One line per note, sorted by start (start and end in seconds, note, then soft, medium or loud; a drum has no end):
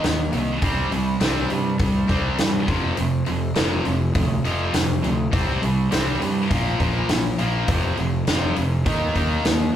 0.03 0.27 D#2 medium
0.03 0.30 D#3 medium
0.03 0.30 A#3 medium
0.03 snare medium
0.03 open hi-hat medium
0.32 0.56 C2 medium
0.32 0.59 D#3 medium
0.32 0.59 A#3 medium
0.32 open hi-hat soft
0.62 0.85 C2 medium
0.62 0.90 C3 medium
0.62 0.90 G3 medium
0.62 0.90 C4 medium
0.62 kick medium
0.62 open hi-hat medium
0.91 1.15 C2 medium
0.91 1.18 C3 medium
0.91 1.18 G3 medium
0.91 open hi-hat soft
1.20 1.44 C2 medium
1.20 1.48 C3 medium
1.20 1.49 G3 medium
1.20 1.49 C4 medium
1.20 snare medium
1.20 open hi-hat medium
1.50 1.74 G2 medium
1.50 1.77 C3 medium
1.50 1.77 G3 medium
1.50 open hi-hat soft
1.79 2.03 C2 medium
1.79 2.06 C3 medium
1.79 2.07 G3 medium
1.79 kick loud
1.79 open hi-hat medium
2.08 2.32 C2 medium
2.08 2.36 C3 medium
2.08 2.37 G3 medium
2.08 2.37 C4 medium
2.08 kick medium
2.08 open hi-hat soft
2.38 2.62 G2 medium
2.38 2.65 C3 medium
2.38 2.65 G3 medium
2.38 snare medium
2.38 open hi-hat medium
2.67 2.91 F1 medium
2.67 2.95 F2 medium
2.67 2.96 C3 medium
2.67 2.96 F3 medium
2.67 kick medium
2.67 open hi-hat soft
2.97 3.21 F1 medium
2.97 3.24 F2 medium
2.97 3.24 C3 medium
2.97 open hi-hat medium
3.26 3.50 F1 medium
3.26 3.53 F2 medium
3.26 3.54 C3 medium
3.26 open hi-hat soft
3.55 3.79 F1 medium
3.55 3.84 F2 medium
3.55 3.84 C3 medium
3.55 3.85 F3 medium
3.55 snare loud
3.55 open hi-hat medium
3.85 4.09 F1 medium
3.85 4.12 F2 medium
3.85 4.13 C3 medium
3.85 open hi-hat soft
4.15 4.38 D2 medium
4.15 4.42 F2 medium
4.15 4.42 C3 medium
4.15 kick medium
4.15 open hi-hat medium
4.44 4.68 F1 medium
4.44 4.72 F2 medium
4.44 4.72 C3 medium
4.44 4.73 F3 medium
4.44 open hi-hat soft
4.74 4.97 F1 medium
4.74 5.01 F2 medium
4.74 5.01 C3 medium
4.74 snare loud
4.74 open hi-hat medium
5.03 5.26 D2 medium
5.03 5.30 F2 medium
5.03 5.30 C3 medium
5.03 open hi-hat soft
5.32 5.56 C2 medium
5.32 5.60 C3 medium
5.32 5.61 G3 medium
5.32 5.61 C4 medium
5.32 kick loud
5.32 open hi-hat medium
5.61 5.86 C2 medium
5.61 5.88 C3 medium
5.61 5.89 G3 medium
5.61 open hi-hat soft
5.91 6.15 C2 medium
5.91 6.19 C3 medium
5.91 6.19 G3 medium
5.91 6.19 C4 medium
5.91 snare medium
5.91 open hi-hat medium
6.21 6.45 G2 medium
6.21 6.48 C3 medium
6.21 6.48 G3 medium
6.21 open hi-hat soft
6.50 6.74 A#1 medium
6.50 6.78 A#2 medium
6.50 6.78 F3 medium
6.50 6.79 A#3 medium
6.50 kick medium
6.50 open hi-hat medium
6.80 7.03 A#1 medium
6.80 7.08 A#2 medium
6.80 7.08 F3 medium
6.80 7.08 A#3 medium
6.80 kick medium
6.80 open hi-hat soft
7.09 7.32 A#1 medium
7.09 7.36 A#2 medium
7.09 7.36 F3 medium
7.09 snare loud
7.09 open hi-hat medium
7.39 7.62 A#1 medium
7.39 7.66 A#2 medium
7.39 7.67 F3 medium
7.39 7.67 A#3 medium
7.39 open hi-hat soft
7.68 7.96 F2 medium
7.68 7.96 C3 medium
7.68 7.96 F3 medium
7.68 kick loud
7.68 open hi-hat medium
7.97 8.21 F1 medium
7.97 8.24 F2 medium
7.97 8.24 C3 medium
7.97 open hi-hat soft
8.27 8.50 F1 medium
8.27 8.55 F2 medium
8.27 8.56 C3 medium
8.27 8.56 F3 medium
8.27 snare loud
8.27 open hi-hat medium
8.56 8.87 F1 medium
8.56 8.83 F2 medium
8.56 8.83 C3 medium
8.56 open hi-hat soft
8.86 9.09 D#2 medium
8.86 9.14 D#3 medium
8.86 9.14 A#3 medium
8.86 9.14 D#4 medium
8.86 kick loud
8.86 open hi-hat medium
9.15 9.39 D#2 medium
9.15 9.43 D#3 medium
9.15 9.43 A#3 medium
9.15 9.43 D#4 medium
9.15 kick medium
9.15 open hi-hat soft
9.45 9.68 D#2 medium
9.45 9.72 D#3 medium
9.45 9.72 A#3 medium
9.45 snare loud
9.45 open hi-hat medium